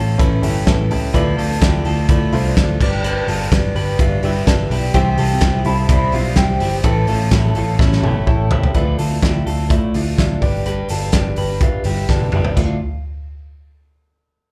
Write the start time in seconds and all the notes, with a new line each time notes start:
Already playing: A1 C#4 E4 F4 A4 C#5
0.18 A1 C#4 E4 A4 B4, kick, hi-hat pedal, ride
0.42 G1 C#4 E4 G4 A4 E5, open hi-hat
0.66 A1 C#4 E4 A4 B4, kick, snare, hi-hat pedal, ride
0.91 C#2 E4 G4, open hi-hat
1.14 D2 D3 F3 A3 D4 E4 F4 A4 B4 D5, kick, hi-hat pedal, ride
1.38 D2 F4 A4, open hi-hat
1.50 A3 D4 E4 A4
1.61 D2 E4 F4 G4 A4 D5, kick, snare, hi-hat pedal, ride
1.84 D2 A3 D4 E4 F4 A4, open hi-hat
2.09 D2 A3 E4 F4 A4 D5, kick, hi-hat pedal, ride
2.33 C2 A3 D4 E4 F4 A4 C5, open hi-hat
2.55 D2 A3 D4 E4 F4 A4 D5, kick, snare, hi-hat pedal, ride
2.80 G1 G3 D4 G4 B4 D5, kick, crash
3.04 G4 B4, hi-hat pedal, ride
3.28 G1 F4 A4, open hi-hat
3.40 D4 G4 B4
3.52 G1 D4 G4 B4 D5, kick, snare, hi-hat pedal, ride
3.75 G1 G3 D4 G4 B4, open hi-hat
3.99 G1 D4 F4 G4 B4 E5, kick, hi-hat pedal, ride
4.23 G1 G3 D4 E4 G4 B4 E5, open hi-hat
4.47 G1 G3 D4 G4 A4 B4 D5, kick, snare, hi-hat pedal, ride
4.70 B1 E4 G4, open hi-hat
4.94 C2 C3 E3 G3 C4 E4 G4 C5 E5, kick, hi-hat pedal, ride
5.18 C2 F4 A4, open hi-hat
5.31 G3 C4 E4 C5
5.41 C2 E4 G4 C5 E5, kick, snare, hi-hat pedal, ride
5.65 C2 G3 C4 E4 F4 A4 C5, open hi-hat
5.89 C2 C4 E4 G4 C5 D5, kick, hi-hat pedal, ride
6.12 B1 G3 C4 D4 E4 F4 G4 C5 E5, open hi-hat
6.36 C2 G3 C4 E4 G4 C5 E5, kick, snare, hi-hat pedal, ride
6.60 G1 E4 G4, open hi-hat
6.84 A1 A2 E3 A3 C#4 E4 A4 B4 C#5 E5, kick, hi-hat pedal, ride
7.07 A1 F4 A4, open hi-hat
7.20 A3 C#4 E4 A4
7.31 A1 E4 G4 A4 C#5 E5, kick, snare, hi-hat pedal, ride
7.55 A1 A3 C#4 E4 F4 A4, open hi-hat
7.79 A1 C#4 E4 A4 C#5 E5, kick, snare
7.92 snare
8.03 G1 A3 C#4 E4 G4 A4 C#5 G5, high tom
8.26 A1 A3 C#4 E4 A4 C#5 G5, kick
8.51 C#2 E4 G4, floor tom
8.63 floor tom
8.75 D2 D3 F3 A3 D4 E4 F4 A4 B4 D5 E5, kick, closed hi-hat
8.99 D2 F4 A4, open hi-hat
9.11 A3 D4 E4 A4
9.22 D2 E4 F4 G4 D5 E5, kick, snare, closed hi-hat
9.46 D2 F4 A4, open hi-hat
9.58 A3 D4 E4 A4
9.70 A3 E4 F4 D5 E5, kick, closed hi-hat
9.94 D2 A3 D4 E4 F4 A4, open hi-hat
10.18 D2 A3 D4 E4 F4 A4 D5 E5, kick, snare, closed hi-hat
10.41 G1 G3 D4 G4 B4 D5, kick, open hi-hat
10.65 G3 D4 G4 B4, closed hi-hat
10.89 G1 F4 A4, open hi-hat
11.02 D4 G4 B4
11.12 G1 D4 G4 B4 D5, kick, snare, closed hi-hat
11.36 G1 G4 B4, open hi-hat
11.50 D4 G4 B4
11.61 D4 F4 G4 B4 E5, kick, closed hi-hat
11.84 G1 G3 D4 E4 G4 B4, open hi-hat
12.08 G1 G3 D4 G4 A4 B4 D5, kick, snare
12.20 high tom
12.32 G1 G3 D4 E4 G4 B4, mid tom
12.45 floor tom
12.56 D2 D3 F3 A3 D4 E4 F4 A4 D5 E5, kick, floor tom, splash